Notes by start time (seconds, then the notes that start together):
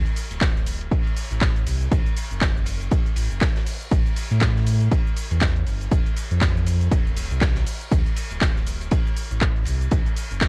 0.06 closed hi-hat, shaker
0.16 open hi-hat, ride, shaker
0.31 D1, closed hi-hat, ride, shaker
0.41 kick, snare, clap, closed hi-hat, ride, shaker
0.56 snare, shaker
0.67 open hi-hat, ride, shaker
0.81 ride, shaker
0.91 kick, closed hi-hat, ride, shaker
1.07 shaker
1.16 open hi-hat, ride, shaker
1.31 A1, closed hi-hat, ride, shaker
1.41 kick, snare, clap, closed hi-hat, ride, shaker
1.56 closed hi-hat, shaker
1.66 C2, open hi-hat, ride, shaker
1.81 closed hi-hat, shaker
1.91 B1, kick, closed hi-hat, ride, shaker
2.06 closed hi-hat, shaker
2.17 open hi-hat, ride, shaker
2.31 F#1, closed hi-hat, shaker
2.41 kick, snare, clap, closed hi-hat, ride, shaker
2.57 shaker
2.66 open hi-hat, ride, shaker
2.81 closed hi-hat, shaker
2.91 kick, closed hi-hat, ride, shaker
3.06 closed hi-hat, shaker
3.16 A1, open hi-hat, ride, shaker
3.31 F#1, closed hi-hat, shaker
3.41 kick, snare, clap, closed hi-hat, ride, shaker
3.56 snare, closed hi-hat, shaker
3.66 open hi-hat, shaker
3.81 closed hi-hat, shaker
3.91 A1, kick, closed hi-hat, ride, shaker
4.06 closed hi-hat, shaker
4.16 open hi-hat, ride, shaker
4.31 A2, closed hi-hat, ride, shaker
4.40 kick, snare, clap, closed hi-hat, ride, shaker
4.56 snare, shaker
4.66 open hi-hat, ride, shaker
4.80 closed hi-hat, ride, shaker
4.91 kick, closed hi-hat, ride, shaker
5.07 shaker
5.16 open hi-hat, ride, shaker
5.31 E2, closed hi-hat, ride, shaker
5.41 kick, snare, clap, closed hi-hat, ride, shaker
5.56 closed hi-hat, shaker
5.66 G1, open hi-hat, ride, shaker
5.81 closed hi-hat, shaker
5.91 F1, kick, closed hi-hat, ride, shaker
6.06 closed hi-hat, shaker
6.17 open hi-hat, ride, shaker
6.31 F2, closed hi-hat, shaker
6.41 kick, snare, clap, closed hi-hat, ride, shaker
6.57 shaker
6.67 open hi-hat, ride, shaker
6.81 closed hi-hat, shaker
6.91 F1, kick, closed hi-hat, ride, shaker
7.07 shaker
7.16 D#1, open hi-hat, ride, shaker
7.31 C2, closed hi-hat, shaker
7.41 kick, snare, clap, closed hi-hat, ride, shaker
7.56 snare, closed hi-hat, shaker
7.66 open hi-hat, shaker
7.81 closed hi-hat, shaker
7.91 D2, kick, closed hi-hat, ride, shaker
8.06 closed hi-hat, shaker
8.16 open hi-hat, ride, shaker
8.30 D1, closed hi-hat, ride, shaker
8.41 kick, snare, clap, closed hi-hat, ride, shaker
8.56 snare, shaker
8.67 open hi-hat, ride, shaker
8.81 closed hi-hat, ride, shaker
8.91 kick, closed hi-hat, ride, shaker
9.07 shaker
9.16 open hi-hat, shaker
9.31 A1, closed hi-hat, shaker
9.41 kick, snare, clap, closed hi-hat, ride, shaker
9.56 closed hi-hat, shaker
9.65 C2, open hi-hat, ride, shaker
9.81 closed hi-hat, shaker
9.91 B1, kick, closed hi-hat, ride, shaker
10.06 closed hi-hat, shaker
10.16 open hi-hat, ride, shaker
10.31 F#1, closed hi-hat, shaker
10.41 kick, snare, clap, closed hi-hat, ride, shaker